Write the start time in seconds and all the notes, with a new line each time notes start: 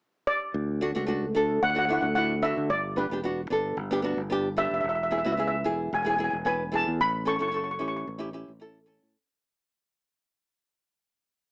0.27 D5
0.54 D2
0.81 A3 D4 F#4
0.95 C#2 A3 D4 F#4
1.06 A3 D4 F#4
1.35 D2 A3 D4 A4
1.62 D2 F#5
1.70 F#5
1.75 A3 D4 F#4 F#5
1.85 A3 F#5
1.89 D4 E4 F#5
2.01 D2 F#5
2.15 A3 D4 E4 F#5
2.42 A3 D4 F#4 E5
2.57 D3
2.70 G1 D5
2.96 B3 D4 G4 B4
3.10 E1 B3 D4 G4
3.24 B3 D4 F#4
3.50 G1 B3 D4 A4
3.77 G1
3.91 B3 D4 G4
4.02 B3 D4 F#4
4.17 G1
4.30 B3 D4 G4
4.57 B3 D4 G4 E5
4.65 E5
4.71 F1 E5
4.81 E1 E5
4.89 E5
4.95 E5
5.03 E5
5.11 B3 E4 G#4 E5
5.18 E5
5.24 C#2 B3 E4 F#4 E5
5.32 E5
5.37 B3 E4 G#4 E5
5.48 E5
5.64 E1 B3 E4 G#4
5.93 E1 G#5
6.03 B3 E4 G#4 G#5
6.10 G#5
6.16 B3 E4 G#4 G#5
6.24 G#5
6.30 E1 G#5
6.45 B3 E4 B4 G#5
6.72 B3 E4 G#4 A5
6.88 E2
7.00 A1 B5
7.25 C#4 E4 A4 C#6
7.36 C#4 E4 C#6
7.40 A4 C#6
7.48 C#4 C#6
7.53 E4 A4
7.57 C#6
7.64 C#6
7.71 C#6
7.79 A1 C#4 E4 G4 C#6
7.88 C#6
7.97 C#6
8.07 A1
8.18 C#4 E4 G4
8.33 C#4 E4 G4
8.48 A1
8.60 C#4 E4 A4
8.86 C#4 E4 A4
9.03 A2